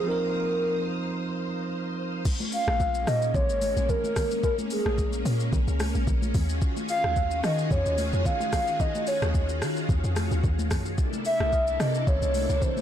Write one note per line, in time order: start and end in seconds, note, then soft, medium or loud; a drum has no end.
0.00 2.20 F3 medium
0.00 2.21 C5 medium
0.00 2.21 F5 medium
0.00 2.21 A#5 medium
0.00 2.21 D#6 medium
0.06 2.21 C4 medium
0.06 2.22 D#4 medium
0.06 1.17 A#4 loud
0.11 2.23 A#4 medium
2.25 6.31 G#3 medium
2.25 6.31 A#3 medium
2.25 10.94 C#4 medium
2.25 kick loud
2.25 crash loud
2.25 shaker medium
2.40 high conga medium
2.40 shaker medium
2.52 3.09 F5 loud
2.52 open hi-hat medium
2.52 shaker medium
2.68 3.06 A#1 loud
2.68 cross-stick loud
2.68 high conga medium
2.80 kick loud
2.80 shaker medium
2.95 shaker medium
3.07 3.34 A#2 loud
3.07 3.36 D#5 loud
3.07 cross-stick medium
3.07 open hi-hat medium
3.07 shaker medium
3.22 shaker medium
3.35 3.51 A#1 loud
3.35 3.91 C#5 loud
3.35 kick loud
3.35 low conga medium
3.35 shaker medium
3.49 3.76 G#1 loud
3.49 shaker medium
3.62 open hi-hat medium
3.62 high conga medium
3.62 shaker loud
3.77 3.89 A#1 loud
3.77 shaker medium
3.89 4.43 A#4 loud
3.89 kick medium
3.89 low conga medium
3.89 shaker medium
4.04 high conga medium
4.04 shaker medium
4.16 kick medium
4.16 cross-stick medium
4.16 open hi-hat medium
4.16 low conga medium
4.16 shaker loud
4.31 shaker medium
4.44 4.56 A#4 loud
4.44 kick loud
4.44 shaker medium
4.58 high conga medium
4.58 shaker medium
4.70 5.22 G#4 medium
4.70 open hi-hat medium
4.70 shaker medium
4.86 5.24 A#1 loud
4.86 cross-stick loud
4.86 high conga medium
4.98 kick loud
4.98 shaker medium
5.13 shaker medium
5.25 5.52 A#2 loud
5.25 open hi-hat medium
5.25 shaker medium
5.40 shaker medium
5.53 5.67 A#1 loud
5.53 kick loud
5.53 low conga medium
5.53 shaker medium
5.68 5.94 C#2 medium
5.68 shaker medium
5.80 cross-stick loud
5.80 open hi-hat medium
5.80 high conga medium
5.80 shaker loud
5.95 6.07 A#1 medium
5.95 shaker medium
6.07 6.34 A#1 loud
6.07 kick medium
6.07 low conga medium
6.07 shaker medium
6.22 high conga medium
6.22 shaker medium
6.34 6.61 D#2 loud
6.34 10.94 D#3 medium
6.34 10.94 F4 medium
6.34 10.94 F#4 medium
6.34 10.94 G#4 medium
6.34 kick loud
6.34 open hi-hat medium
6.34 low conga medium
6.34 shaker loud
6.49 shaker medium
6.62 kick loud
6.62 shaker medium
6.77 high conga medium
6.77 shaker medium
6.89 7.40 F5 loud
6.89 open hi-hat medium
6.89 shaker medium
7.04 7.42 D#2 loud
7.04 cross-stick loud
7.04 high conga medium
7.16 kick loud
7.16 shaker medium
7.31 shaker medium
7.44 7.70 D#3 loud
7.44 7.73 D#5 loud
7.44 cross-stick loud
7.44 open hi-hat medium
7.44 shaker medium
7.58 shaker medium
7.71 7.85 F2 loud
7.71 8.25 C#5 loud
7.71 kick loud
7.71 low conga medium
7.71 shaker medium
7.86 8.12 D#2 medium
7.86 shaker medium
7.98 open hi-hat medium
7.98 high conga medium
7.98 shaker loud
8.13 8.25 F2 medium
8.13 shaker medium
8.26 8.82 F5 loud
8.26 kick medium
8.26 low conga medium
8.26 shaker medium
8.40 high conga medium
8.40 shaker medium
8.53 kick medium
8.53 cross-stick medium
8.53 open hi-hat medium
8.53 low conga medium
8.53 shaker loud
8.67 shaker medium
8.80 9.09 D#5 loud
8.80 kick loud
8.80 low conga medium
8.80 shaker medium
8.95 high conga medium
8.95 shaker medium
9.07 9.62 C#5 medium
9.07 open hi-hat medium
9.07 shaker medium
9.22 9.63 D#2 loud
9.22 cross-stick loud
9.22 high conga medium
9.22 shaker medium
9.35 kick loud
9.35 shaker medium
9.49 shaker medium
9.62 9.88 D#3 loud
9.62 cross-stick loud
9.62 open hi-hat medium
9.62 shaker medium
9.76 shaker medium
9.89 10.04 D#2 loud
9.89 kick loud
9.89 low conga medium
9.89 shaker medium
10.04 10.30 F2 medium
10.04 shaker medium
10.16 cross-stick loud
10.16 open hi-hat medium
10.16 high conga medium
10.16 shaker loud
10.31 10.43 D#2 medium
10.31 shaker medium
10.44 10.72 D#2 loud
10.44 kick medium
10.44 low conga medium
10.44 shaker medium
10.59 high conga medium
10.59 shaker medium
10.71 10.97 F#2 loud
10.71 kick medium
10.71 cross-stick loud
10.71 open hi-hat medium
10.71 low conga medium
10.71 shaker loud
10.86 shaker medium
10.98 12.81 C3 medium
10.98 12.81 A#3 medium
10.98 12.81 D4 medium
10.98 12.81 E4 medium
10.98 12.81 A4 medium
10.98 kick loud
10.98 shaker medium
11.13 high conga medium
11.13 shaker medium
11.25 11.82 E5 loud
11.25 open hi-hat medium
11.25 shaker medium
11.40 11.79 C2 loud
11.40 cross-stick loud
11.40 high conga medium
11.53 kick loud
11.53 shaker medium
11.67 shaker medium
11.80 12.06 C3 loud
11.80 12.09 D#5 loud
11.80 cross-stick loud
11.80 open hi-hat medium
11.80 shaker medium
11.95 shaker medium
12.07 12.22 C#2 loud
12.07 12.56 C#5 loud
12.07 kick loud
12.07 low conga medium
12.07 shaker medium
12.22 12.49 C2 medium
12.22 shaker medium
12.34 open hi-hat medium
12.34 high conga medium
12.34 shaker loud
12.49 12.61 C#2 medium
12.49 shaker medium
12.56 12.64 C#5 medium
12.62 12.81 C5 loud
12.62 kick medium
12.62 low conga medium
12.62 shaker medium
12.77 high conga medium
12.77 shaker medium